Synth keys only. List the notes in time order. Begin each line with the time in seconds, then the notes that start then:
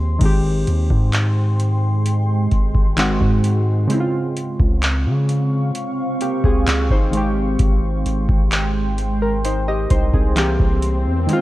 Already playing: D#3 A#3 C4 G4
0.19 D#3 G#3
0.23 C4 G4
2.97 D#3 G#3 C4 F#4
3.87 C#3 G#3
3.92 C4 E4
4.00 F4
6.22 A#3 G4
6.45 C4 G#4
6.91 D#4 C5
7.11 D#3 G#3
7.15 C4 G4
9.22 A#4
9.45 D#4 C5
9.68 G4 D#5
9.91 D#4 C5
10.14 C4 G#4
10.35 E3 A#3 C4 G4
11.27 D#3 G#3
11.31 C4 F4